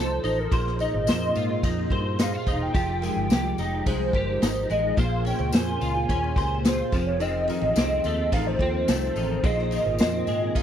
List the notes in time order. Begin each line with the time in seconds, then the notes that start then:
Already playing: C2 F3 D#4 A4 C5
0.24 A1 D#4, ride, tambourine
0.39 A#4
0.51 A#1 A#2 F4 G#4 C5, kick, ride, tambourine
0.67 snare
0.79 D#4 D#5, ride, tambourine
0.94 G#1 G#4 C5
1.07 F2 F4 A#4 C5, snare, ride, tambourine
1.35 G#2 F4, ride, tambourine
1.49 F4 G#4
1.63 F2 D#4, kick, ride, tambourine
1.90 G2 G4 A#4 C5, kick, ride
2.19 D#4 G#4 C5 F5, snare, ride, tambourine
2.34 F4
2.46 E1 D#4 G#4 C5, kick, ride, tambourine
2.62 G5
2.74 F1 F3 F4 G4 G#4, kick, ride, tambourine
3.02 G#3 G4 A#4, ride, tambourine
3.16 G1
3.30 C2 G4, snare, ride, tambourine
3.58 F1 D#4, ride, tambourine
3.86 C2 G#3 G#4 C5, kick, ride, tambourine
4.13 G1 G4 A#4, kick, ride
4.42 G#1 D#4, snare, ride, tambourine
4.70 A1 G#3 D#5, ride, tambourine
4.97 A#1 A#2 F4 G#4 C5 F5, kick, ride, tambourine
5.25 C#4 G5, ride, tambourine
5.38 C#2 G#4 C5, ride
5.52 F2 F4 A#4 C5 G#5, snare, ride, tambourine
5.81 C#2 F4, ride, tambourine
5.95 F4 G#4
6.09 D#2 C#4, kick, ride, tambourine
6.24 ride
6.36 C#2 G4 A#4 C5, kick, ride, tambourine
6.65 F4 G#4 C5, snare, ride, tambourine
6.92 F1 F2 A4 C5, kick, ride, tambourine
7.07 C#5
7.20 F2 C4 D#4 G#4 D#5, ride, tambourine
7.47 D#3 F4 A4, ride, tambourine
7.61 A1, ride
7.76 C2 C4, snare, ride, tambourine
8.04 D#2 A3, ride, tambourine
8.32 A1 D#3 A4 C5 F5, kick, ride, tambourine
8.47 C5
8.59 D#2 C4 F4 A4, kick, ride
8.88 C2 A3, snare, ride, tambourine
9.16 A1 D#3, ride, tambourine
9.43 A#1 A#2 C4 F4 G#4 D#5, kick, ride, tambourine
9.59 snare
9.71 D#3, ride, tambourine
9.85 G#1 G#4 C5
9.98 F2 C4 F4 A#4, snare, ride, tambourine
10.27 G#2 G#3, ride, tambourine
10.41 F4 G#4
10.55 D#3 F5, kick, ride, tambourine